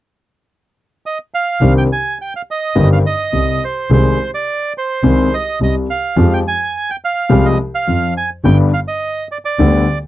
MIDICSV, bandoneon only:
0, 0, Header, 1, 2, 480
1, 0, Start_track
1, 0, Key_signature, -3, "minor"
1, 0, Tempo, 570342
1, 1354, Time_signature, 4, 2, 24, 8
1, 8478, End_track
2, 0, Start_track
2, 0, Title_t, "Bandoneon"
2, 0, Program_c, 0, 23
2, 893, Note_on_c, 0, 75, 69
2, 996, Note_off_c, 0, 75, 0
2, 1131, Note_on_c, 0, 77, 81
2, 1460, Note_off_c, 0, 77, 0
2, 1495, Note_on_c, 0, 79, 79
2, 1545, Note_off_c, 0, 79, 0
2, 1619, Note_on_c, 0, 80, 79
2, 1834, Note_off_c, 0, 80, 0
2, 1864, Note_on_c, 0, 79, 72
2, 1965, Note_off_c, 0, 79, 0
2, 1986, Note_on_c, 0, 77, 72
2, 2035, Note_off_c, 0, 77, 0
2, 2111, Note_on_c, 0, 75, 77
2, 2433, Note_off_c, 0, 75, 0
2, 2464, Note_on_c, 0, 77, 74
2, 2513, Note_off_c, 0, 77, 0
2, 2577, Note_on_c, 0, 75, 85
2, 3064, Note_off_c, 0, 75, 0
2, 3067, Note_on_c, 0, 72, 65
2, 3291, Note_off_c, 0, 72, 0
2, 3303, Note_on_c, 0, 72, 82
2, 3625, Note_off_c, 0, 72, 0
2, 3656, Note_on_c, 0, 74, 79
2, 3980, Note_off_c, 0, 74, 0
2, 4021, Note_on_c, 0, 72, 77
2, 4494, Note_on_c, 0, 75, 83
2, 4500, Note_off_c, 0, 72, 0
2, 4707, Note_off_c, 0, 75, 0
2, 4739, Note_on_c, 0, 75, 65
2, 4841, Note_off_c, 0, 75, 0
2, 4965, Note_on_c, 0, 77, 74
2, 5328, Note_off_c, 0, 77, 0
2, 5333, Note_on_c, 0, 79, 76
2, 5382, Note_off_c, 0, 79, 0
2, 5450, Note_on_c, 0, 80, 84
2, 5810, Note_off_c, 0, 80, 0
2, 5811, Note_on_c, 0, 79, 78
2, 5860, Note_off_c, 0, 79, 0
2, 5930, Note_on_c, 0, 77, 74
2, 6274, Note_on_c, 0, 75, 74
2, 6289, Note_off_c, 0, 77, 0
2, 6380, Note_off_c, 0, 75, 0
2, 6520, Note_on_c, 0, 77, 78
2, 6849, Note_off_c, 0, 77, 0
2, 6878, Note_on_c, 0, 80, 73
2, 6984, Note_off_c, 0, 80, 0
2, 7109, Note_on_c, 0, 79, 81
2, 7217, Note_off_c, 0, 79, 0
2, 7352, Note_on_c, 0, 77, 76
2, 7405, Note_off_c, 0, 77, 0
2, 7472, Note_on_c, 0, 75, 77
2, 7806, Note_off_c, 0, 75, 0
2, 7840, Note_on_c, 0, 74, 63
2, 7892, Note_off_c, 0, 74, 0
2, 7953, Note_on_c, 0, 74, 70
2, 8403, Note_off_c, 0, 74, 0
2, 8478, End_track
0, 0, End_of_file